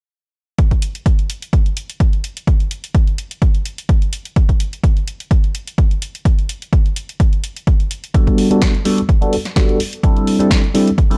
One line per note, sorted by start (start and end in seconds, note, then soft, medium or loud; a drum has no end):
0.58 kick loud
0.58 closed hi-hat soft
0.71 kick medium
0.71 closed hi-hat soft
0.82 closed hi-hat medium
0.95 closed hi-hat soft
1.06 kick loud
1.06 closed hi-hat soft
1.19 closed hi-hat soft
1.30 closed hi-hat medium
1.42 closed hi-hat soft
1.53 kick loud
1.53 closed hi-hat soft
1.66 closed hi-hat soft
1.77 closed hi-hat medium
1.90 closed hi-hat soft
2.00 kick loud
2.00 closed hi-hat soft
2.13 closed hi-hat soft
2.24 closed hi-hat medium
2.37 closed hi-hat soft
2.47 kick loud
2.47 closed hi-hat soft
2.60 closed hi-hat soft
2.71 closed hi-hat medium
2.84 closed hi-hat soft
2.95 kick loud
2.95 closed hi-hat soft
3.07 closed hi-hat soft
3.18 closed hi-hat medium
3.31 closed hi-hat soft
3.42 kick loud
3.42 closed hi-hat soft
3.55 closed hi-hat soft
3.65 closed hi-hat medium
3.78 closed hi-hat soft
3.89 kick loud
3.89 closed hi-hat soft
4.02 closed hi-hat soft
4.13 closed hi-hat medium
4.25 closed hi-hat soft
4.36 kick loud
4.36 closed hi-hat soft
4.49 kick medium
4.49 closed hi-hat soft
4.60 closed hi-hat medium
4.73 closed hi-hat soft
4.84 kick loud
4.84 closed hi-hat soft
4.97 closed hi-hat soft
5.08 closed hi-hat medium
5.20 closed hi-hat soft
5.31 kick loud
5.31 closed hi-hat soft
5.44 closed hi-hat soft
5.55 closed hi-hat medium
5.68 closed hi-hat soft
5.78 kick loud
5.78 closed hi-hat soft
5.91 closed hi-hat soft
6.02 closed hi-hat medium
6.15 closed hi-hat soft
6.25 kick loud
6.25 closed hi-hat soft
6.39 closed hi-hat soft
6.49 closed hi-hat medium
6.62 closed hi-hat soft
6.73 kick loud
6.73 closed hi-hat soft
6.86 closed hi-hat soft
6.96 closed hi-hat medium
7.09 closed hi-hat soft
7.20 kick loud
7.20 closed hi-hat soft
7.33 closed hi-hat soft
7.44 closed hi-hat medium
7.56 closed hi-hat soft
7.67 kick loud
7.67 closed hi-hat soft
7.80 closed hi-hat soft
7.91 closed hi-hat medium
8.04 closed hi-hat soft
8.14 8.48 G3 medium
8.14 8.48 B3 medium
8.14 8.48 D4 medium
8.14 8.48 F#4 medium
8.14 8.48 A4 medium
8.14 kick loud
8.14 closed hi-hat soft
8.27 kick medium
8.27 closed hi-hat soft
8.38 open hi-hat loud
8.50 8.72 G3 medium
8.50 8.72 B3 medium
8.50 8.72 D4 medium
8.50 8.72 F#4 medium
8.50 8.73 A4 medium
8.50 closed hi-hat soft
8.62 kick loud
8.62 snare loud
8.62 closed hi-hat soft
8.75 closed hi-hat soft
8.85 9.00 G3 medium
8.85 9.00 B3 medium
8.85 9.00 D4 medium
8.85 9.00 F#4 medium
8.85 9.00 A4 medium
8.85 open hi-hat loud
8.98 closed hi-hat soft
9.09 kick loud
9.09 closed hi-hat soft
9.21 9.34 G3 medium
9.21 9.34 B3 medium
9.21 9.34 D4 medium
9.21 9.35 F#4 medium
9.21 9.35 A4 medium
9.21 closed hi-hat soft
9.33 open hi-hat loud
9.45 snare soft
9.45 closed hi-hat soft
9.56 9.78 G3 medium
9.56 9.78 B3 medium
9.56 9.78 D4 medium
9.56 9.78 F#4 medium
9.56 9.78 A4 medium
9.56 kick loud
9.56 snare loud
9.56 closed hi-hat soft
9.69 closed hi-hat soft
9.80 open hi-hat medium
9.93 closed hi-hat soft
10.03 10.37 G3 medium
10.03 10.37 C4 medium
10.03 10.37 D4 medium
10.03 10.37 E4 medium
10.03 10.37 A4 medium
10.03 kick loud
10.03 closed hi-hat soft
10.16 closed hi-hat soft
10.27 open hi-hat medium
10.39 10.61 G3 medium
10.39 10.61 C4 medium
10.39 10.61 D4 medium
10.39 10.61 E4 medium
10.39 10.62 A4 medium
10.39 closed hi-hat soft
10.51 kick loud
10.51 snare loud
10.51 closed hi-hat soft
10.64 closed hi-hat soft
10.74 10.89 G3 medium
10.74 10.89 C4 medium
10.74 10.89 D4 medium
10.74 10.89 E4 medium
10.74 10.89 A4 medium
10.74 open hi-hat loud
10.87 closed hi-hat soft
10.98 kick loud
10.98 closed hi-hat soft
11.11 11.18 G3 medium
11.11 11.18 C4 medium
11.11 11.18 D4 medium
11.11 11.18 E4 medium
11.11 11.18 A4 medium
11.11 open hi-hat medium